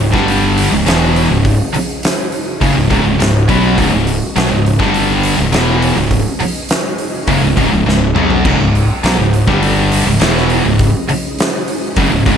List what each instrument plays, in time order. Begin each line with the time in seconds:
Already playing: fingered electric bass C#1, string machine C#4 G#4 D#5
0.13 fingered electric bass G1, distorted electric guitar G2 D3 G3, string machine G3 D4 A4, kick, snare
0.28 open hi-hat
0.58 open hi-hat
0.71 fingered electric bass C#1, distorted electric guitar C#2 G#2, string machine C#4 G#4 D#5
0.85 fingered electric bass E1, distorted electric guitar E2 B2 E3, snare, open hi-hat
1.16 open hi-hat
1.29 fingered electric bass C#1, distorted electric guitar C#2 G#2
1.45 kick, open hi-hat
1.74 muted distorted electric guitar stroke, muted fingered electric bass stroke, open hi-hat
2.03 snare, open hi-hat
2.32 open hi-hat
2.61 fingered electric bass F#1, distorted electric guitar F#2 C#3, kick, open hi-hat
2.75 fingered electric bass C#1, distorted electric guitar C#2 G#2
2.90 fingered electric bass C#1, distorted electric guitar C#2 G#2, kick, open hi-hat
3.04 fingered electric bass C#1, distorted electric guitar C#2 G#2, string machine F#4
3.19 fingered electric bass C#1, distorted electric guitar C#2 G#2, snare, open hi-hat
3.48 fingered electric bass B1, distorted electric guitar B2 F#3 B3, kick, open hi-hat
3.77 fingered electric bass C#1, distorted electric guitar C#2 G#2, kick, open hi-hat
3.91 fingered electric bass C#1, distorted electric guitar C#2 G#2
4.07 open hi-hat
4.36 fingered electric bass B1, distorted electric guitar B2 F#3, snare, open hi-hat
4.50 fingered electric bass C#1, distorted electric guitar C#2 G#2
4.66 open hi-hat
4.79 fingered electric bass G1, distorted electric guitar G2 D3 G3, string machine G3 D4 A4, kick, snare
4.94 open hi-hat
5.23 open hi-hat
5.37 fingered electric bass C#1, distorted electric guitar C#2 G#2, string machine C#4 G#4 D#5
5.53 fingered electric bass E1, distorted electric guitar E2 B2 E3, snare, open hi-hat
5.82 open hi-hat
5.96 fingered electric bass C#1, distorted electric guitar C#2 G#2
6.11 kick, open hi-hat
6.40 muted distorted electric guitar stroke, muted fingered electric bass stroke, open hi-hat
6.69 snare, open hi-hat
6.98 open hi-hat
7.27 fingered electric bass F#1, distorted electric guitar F#2 C#3, kick, open hi-hat
7.41 fingered electric bass C#1, distorted electric guitar C#2 G#2
7.56 fingered electric bass C#1, distorted electric guitar C#2 G#2, kick, open hi-hat
7.72 fingered electric bass C#1, distorted electric guitar C#2 G#2
7.86 fingered electric bass C#1, distorted electric guitar C#2 G#2, snare
8.15 fingered electric bass B1, distorted electric guitar B2 F#3 B3, mid tom
8.30 floor tom
8.45 fingered electric bass C#1, distorted electric guitar C#2 G#2, kick, crash
8.58 fingered electric bass C#1, distorted electric guitar C#2 G#2
8.75 open hi-hat
9.03 fingered electric bass B1, distorted electric guitar B2 F#3, snare, open hi-hat
9.18 fingered electric bass C#1, distorted electric guitar C#2 G#2
9.33 open hi-hat
9.47 fingered electric bass G1, distorted electric guitar G2 D3 G3, string machine G3 D4 A4, kick
9.63 open hi-hat
9.92 open hi-hat
10.06 fingered electric bass C#1, distorted electric guitar C#2 G#2, string machine C#4 G#4 D#5
10.20 fingered electric bass E1, distorted electric guitar E2 B2 E3, snare, open hi-hat
10.37 snare
10.50 open hi-hat
10.64 fingered electric bass C#1, distorted electric guitar C#2 G#2
10.79 kick, open hi-hat
11.09 muted distorted electric guitar stroke, muted fingered electric bass stroke, open hi-hat
11.39 snare, open hi-hat
11.68 open hi-hat
11.96 fingered electric bass F#1, distorted electric guitar F#2 C#3, kick, open hi-hat
12.11 fingered electric bass C#1, distorted electric guitar C#2 G#2
12.26 fingered electric bass C#1, distorted electric guitar C#2 G#2, kick, open hi-hat